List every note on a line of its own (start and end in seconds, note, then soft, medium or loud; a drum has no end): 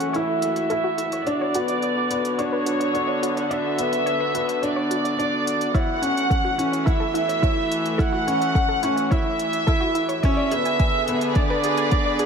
0.00 1.27 E3 medium
0.00 1.26 A3 medium
0.00 0.12 C#4 medium
0.00 12.04 F#4 medium
0.00 0.15 F#5 loud
0.00 closed hi-hat soft
0.13 0.64 E4 medium
0.13 0.20 C#5 loud
0.13 1.28 E5 loud
0.13 closed hi-hat soft
0.42 0.65 F#1 medium
0.42 closed hi-hat medium
0.56 closed hi-hat soft
0.70 1.20 E4 medium
0.70 0.74 A4 medium
0.70 closed hi-hat soft
0.84 0.90 F#4 medium
0.98 1.21 F#1 medium
0.98 1.04 E4 medium
0.98 closed hi-hat medium
1.12 1.19 C#5 medium
1.12 closed hi-hat soft
1.27 5.76 D3 medium
1.27 1.51 D4 medium
1.27 1.33 C#5 medium
1.27 2.40 D5 loud
1.27 closed hi-hat soft
1.35 7.36 B3 medium
1.41 1.47 C#5 medium
1.54 1.77 B1 medium
1.54 2.04 B3 medium
1.54 1.64 F#4 loud
1.54 closed hi-hat medium
1.68 1.75 D5 medium
1.68 closed hi-hat soft
1.82 1.89 D5 loud
1.82 closed hi-hat soft
2.10 2.33 B1 medium
2.10 2.36 B3 medium
2.10 closed hi-hat medium
2.25 closed hi-hat soft
2.39 2.88 D4 medium
2.39 2.42 C#5 loud
2.39 3.45 C#5 loud
2.39 closed hi-hat soft
2.53 2.58 B4 medium
2.66 2.89 B1 medium
2.66 2.72 F#4 medium
2.66 closed hi-hat medium
2.80 2.86 D5 medium
2.80 closed hi-hat soft
2.94 3.44 D4 medium
2.94 3.00 C#5 medium
2.94 closed hi-hat soft
3.08 3.14 C#5 medium
3.22 3.45 B1 medium
3.22 3.31 F#4 medium
3.22 closed hi-hat medium
3.37 3.43 D5 medium
3.37 closed hi-hat soft
3.43 3.51 F#5 medium
3.51 3.75 D4 medium
3.51 3.57 D5 loud
3.51 4.63 E5 loud
3.51 closed hi-hat soft
3.78 4.01 B1 medium
3.78 4.28 B3 medium
3.78 closed hi-hat medium
3.93 closed hi-hat soft
4.06 4.10 C#5 loud
4.06 closed hi-hat soft
4.20 4.27 B4 medium
4.34 4.57 B1 medium
4.34 4.60 B3 medium
4.34 4.40 F#4 medium
4.34 closed hi-hat medium
4.48 4.54 D5 medium
4.48 closed hi-hat soft
4.62 5.12 D4 medium
4.62 4.68 C#5 medium
4.62 5.76 D5 loud
4.62 closed hi-hat soft
4.76 4.82 C#5 loud
4.91 5.13 B1 medium
4.91 4.99 F#4 medium
4.91 closed hi-hat medium
5.04 5.11 D5 medium
5.04 closed hi-hat soft
5.19 5.68 D4 medium
5.19 5.25 D5 medium
5.19 closed hi-hat soft
5.47 5.69 B1 medium
5.47 closed hi-hat medium
5.61 closed hi-hat soft
5.74 10.23 E3 medium
5.74 5.99 E4 medium
5.74 5.81 C#5 loud
5.74 6.88 F#5 loud
5.74 kick medium
5.74 closed hi-hat soft
5.89 10.23 A3 medium
6.02 6.26 A1 medium
6.02 6.51 C#4 medium
6.02 closed hi-hat medium
6.17 closed hi-hat soft
6.30 6.34 A4 loud
6.30 kick loud
6.30 closed hi-hat soft
6.45 6.51 F#4 medium
6.58 6.82 A1 medium
6.58 6.83 C#4 medium
6.58 6.65 E4 medium
6.58 closed hi-hat medium
6.72 6.79 C#5 medium
6.72 closed hi-hat soft
6.86 7.35 E4 medium
6.86 6.92 A4 medium
6.86 8.01 E5 loud
6.86 kick loud
6.86 closed hi-hat soft
7.00 7.07 A4 loud
7.14 7.37 A1 medium
7.14 7.23 E4 loud
7.14 closed hi-hat medium
7.29 7.35 C#5 medium
7.29 closed hi-hat soft
7.42 7.92 E4 medium
7.42 7.49 C#5 loud
7.42 kick loud
7.42 closed hi-hat soft
7.72 7.94 A1 medium
7.72 closed hi-hat medium
7.86 closed hi-hat soft
7.98 8.24 E4 medium
7.98 8.02 A4 loud
7.98 9.12 F#5 loud
7.98 kick medium
7.98 closed hi-hat soft
8.13 8.19 F#4 medium
8.27 8.50 A1 medium
8.27 8.76 C#4 medium
8.27 8.33 E4 medium
8.27 closed hi-hat medium
8.41 8.47 C#5 medium
8.41 closed hi-hat soft
8.55 8.61 A4 medium
8.55 kick loud
8.55 closed hi-hat soft
8.69 8.75 A4 medium
8.83 9.06 A1 medium
8.83 9.08 C#4 medium
8.83 8.92 E4 loud
8.83 closed hi-hat medium
8.96 9.03 C#5 medium
8.96 closed hi-hat soft
9.11 9.61 E4 medium
9.11 9.17 C#5 loud
9.11 10.21 E5 loud
9.11 kick loud
9.11 closed hi-hat soft
9.39 9.62 A1 medium
9.39 closed hi-hat medium
9.53 closed hi-hat soft
9.67 10.17 E4 medium
9.67 9.71 A4 loud
9.67 kick loud
9.67 closed hi-hat soft
9.81 9.87 F#4 medium
9.95 10.18 A1 medium
9.95 10.01 E4 medium
9.95 closed hi-hat medium
10.09 10.15 C#5 medium
10.09 closed hi-hat soft
10.23 12.26 D3 medium
10.23 10.49 C#4 loud
10.23 10.29 D5 medium
10.23 11.33 E5 loud
10.23 kick loud
10.23 closed hi-hat soft
10.37 12.26 B3 medium
10.37 10.43 D5 loud
10.51 10.75 G#1 medium
10.51 11.01 B3 medium
10.51 10.60 G#4 loud
10.51 closed hi-hat medium
10.65 10.72 G#5 medium
10.65 closed hi-hat soft
10.77 12.26 G#4 loud
10.77 10.86 G#5 loud
10.77 kick loud
10.77 closed hi-hat soft
11.03 12.26 B4 medium
11.08 11.31 G#1 medium
11.08 11.33 B3 medium
11.08 closed hi-hat medium
11.21 closed hi-hat soft
11.35 11.86 D4 medium
11.35 11.39 D5 loud
11.35 12.26 D5 loud
11.35 kick loud
11.35 closed hi-hat soft
11.50 11.56 B4 loud
11.64 11.86 G#1 loud
11.64 11.70 G#4 medium
11.64 closed hi-hat medium
11.77 11.84 G#5 medium
11.77 closed hi-hat soft
11.91 12.26 D4 medium
11.91 11.98 D5 medium
11.91 kick loud
11.91 closed hi-hat soft
12.06 12.12 D5 medium
12.19 12.26 G#4 loud
12.19 closed hi-hat medium